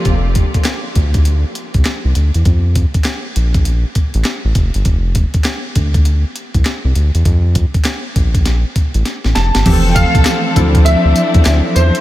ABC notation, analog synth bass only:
X:1
M:4/4
L:1/16
Q:"Swing 16ths" 1/4=100
K:Bblyd
V:1 name="Analog synth bass" clef=bass
F,,,3 z3 D,,4 z C,, z C,, D,, E,, | F,,3 z3 B,,,4 z A,,, z A,,, F,,, G,,, | F,,,3 z3 D,,4 z C,, z C,, D,, E,, | F,,3 z3 B,,,4 z A,,, z A,,, F,,, G,,, |
F,,,3 C,, z2 D,,3 D,, z E,, D,, z E,, z |]